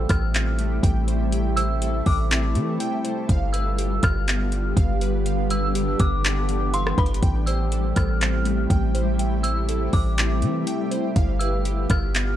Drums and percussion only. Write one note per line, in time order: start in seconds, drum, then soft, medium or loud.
0.09 kick loud
0.09 cross-stick loud
0.09 closed hi-hat medium
0.34 clap loud
0.34 closed hi-hat medium
0.59 closed hi-hat medium
0.83 kick loud
0.83 closed hi-hat medium
1.08 closed hi-hat medium
1.32 closed hi-hat medium
1.57 closed hi-hat medium
1.82 closed hi-hat medium
2.06 kick loud
2.06 open hi-hat medium
2.31 clap loud
2.31 closed hi-hat medium
2.55 closed hi-hat medium
2.80 closed hi-hat medium
3.05 closed hi-hat medium
3.29 kick loud
3.29 closed hi-hat medium
3.54 closed hi-hat medium
3.78 closed hi-hat medium
4.03 kick loud
4.03 cross-stick loud
4.03 closed hi-hat medium
4.28 clap loud
4.28 closed hi-hat medium
4.52 closed hi-hat medium
4.77 kick loud
4.77 closed hi-hat medium
5.01 closed hi-hat medium
5.26 closed hi-hat medium
5.50 closed hi-hat medium
5.75 closed hi-hat medium
5.99 kick loud
5.99 closed hi-hat medium
6.24 clap loud
6.24 closed hi-hat medium
6.49 closed hi-hat medium
6.74 closed hi-hat medium
6.87 cross-stick loud
6.98 kick loud
6.98 closed hi-hat soft
7.06 closed hi-hat medium
7.14 closed hi-hat medium
7.23 kick loud
7.23 closed hi-hat medium
7.47 closed hi-hat medium
7.72 closed hi-hat medium
7.96 kick loud
7.96 cross-stick loud
7.96 closed hi-hat medium
8.21 clap loud
8.21 closed hi-hat medium
8.45 closed hi-hat medium
8.70 kick loud
8.70 closed hi-hat medium
8.95 closed hi-hat medium
9.19 closed hi-hat medium
9.44 closed hi-hat medium
9.69 closed hi-hat medium
9.93 kick loud
9.93 open hi-hat medium
10.18 clap loud
10.18 closed hi-hat medium
10.42 closed hi-hat medium
10.67 closed hi-hat medium
10.91 closed hi-hat medium
11.16 kick loud
11.16 closed hi-hat medium
11.41 closed hi-hat medium
11.65 closed hi-hat medium
11.90 kick loud
11.90 cross-stick loud
11.90 closed hi-hat medium
12.15 clap loud
12.15 closed hi-hat medium